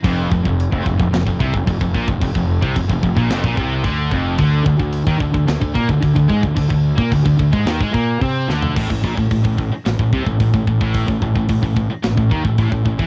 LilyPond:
<<
  \new Staff \with { instrumentName = "Overdriven electric guitar" } { \clef bass \time 4/4 \key bes \lydian \tempo 4 = 110 f,8 f,16 f,8 f,16 f,16 f,16 f,16 f,16 c16 f,16 f,16 f,16 bes,16 f,16 | f,16 f,8 c16 f,16 f,16 f,16 bes,16 f,16 bes,16 c8 d8 f,8 | d8 d16 d8 dis16 d16 d16 d16 d16 bes16 d16 d16 d16 aes16 d16 | d16 d8 bes16 d16 d16 d16 aes16 dis16 aes16 bes8 c'8 d8 |
r1 | r1 | }
  \new Staff \with { instrumentName = "Distorted electric guitar" } { \clef bass \time 4/4 \key bes \lydian f,8 f,16 f,8 f,16 f,16 f,16 f,16 f,16 c16 f,16 f,16 f,16 bes,16 f,16 | f,16 f,8 c16 f,16 f,16 f,16 bes,16 f,16 bes,16 c8 d8 f,8 | d8 d16 d8 dis16 d16 d16 d16 d16 bes16 d16 d16 d16 aes16 d16 | d16 d8 bes16 d16 d16 d16 aes16 dis16 aes16 bes8 c'8 d8 |
a,16 a,16 bes,16 a,16 a,16 a,16 a,16 r16 a,16 a,16 c16 a,16 a,16 a,16 a,16 a,16~ | a,16 a,16 a,16 a,16 a,16 a,16 a,16 r16 a,16 a,16 dis16 a,16 a,16 a,16 a,16 e16 | }
  \new Staff \with { instrumentName = "Distorted electric guitar" } { \clef bass \time 4/4 \key bes \lydian f,8 f,16 f,8 f,16 f,16 f,16 f,16 f,16 c16 f,16 f,16 f,16 bes,16 f,16 | f,16 f,8 c16 f,16 f,16 f,16 bes,16 f,16 bes,16 c8 d8 f,8 | d8 d16 d8 dis16 d16 d16 d16 d16 bes16 d16 d16 d16 aes16 d16 | d16 d8 bes16 d16 d16 d16 aes16 dis16 aes16 bes8 c'8 d8 |
a,16 a,16 bes,16 a,16 a,16 a,16 a,16 r16 a,16 a,16 c16 a,16 a,16 a,16 a,16 a,16~ | a,16 a,16 a,16 a,16 a,16 a,16 a,16 r16 a,16 a,16 dis16 a,16 a,16 a,16 a,16 e16 | }
  \new Staff \with { instrumentName = "Fingered electric bass" } { \clef bass \time 4/4 \key bes \lydian f,,8 f,,16 f,,8 f,,16 f,,16 f,,16 f,,16 f,,16 c,16 f,,16 f,,16 f,,16 bes,,16 f,,16 | f,,16 f,,8 c,16 f,,16 f,,16 f,,16 bes,,16 f,,16 bes,,16 c,8 d,8 f,,8 | d,8 d,16 d,8 dis,16 d,16 d,16 d,16 d,16 bes,16 d,16 d,16 d,16 aes,16 d,16 | d,16 d,8 bes,16 d,16 d,16 d,16 aes,16 dis,16 aes,16 bes,8 c8 d,8 |
a,,16 a,,16 bes,,16 a,,16 a,,16 a,,16 a,,16 r16 a,,16 a,,16 c,16 a,,16 a,,16 a,,16 a,,16 a,,16~ | a,,16 a,,16 a,,16 a,,16 a,,16 a,,16 a,,16 r16 a,,16 a,,16 dis,16 a,,16 a,,16 a,,16 a,,16 e,16 | }
  \new DrumStaff \with { instrumentName = "Drums" } \drummode { \time 4/4 <cymc bd>8 bd16 bd16 cymc16 bd16 bd16 bd16 <cymc sn>16 bd16 bd16 bd16 <cymc bd>16 bd16 bd16 bd16 | <cymc bd>16 bd8 bd16 <cymc bd>16 bd16 bd16 bd16 <cymc sn>16 bd16 bd8 <cymc bd>8 bd8 | <cymc bd>8 bd16 bd16 cymc16 bd16 bd16 bd16 <cymc sn>16 bd16 bd16 bd16 <cymc bd>16 bd16 bd16 bd16 | <cymc bd>16 bd8 bd16 <cymc bd>16 bd16 bd16 bd16 <cymc sn>16 bd16 bd8 <cymc bd>8 sn16 tomfh16 |
<cymc bd>16 bd16 bd16 bd16 <hho bd>16 bd16 bd8 <hho sn>16 bd16 bd16 bd16 <hho bd>16 bd16 bd16 bd16 | <hho bd>16 bd16 bd16 bd16 <hho bd>16 bd16 bd8 <hho sn>16 bd16 bd16 bd16 <hho bd>16 bd16 bd16 bd16 | }
>>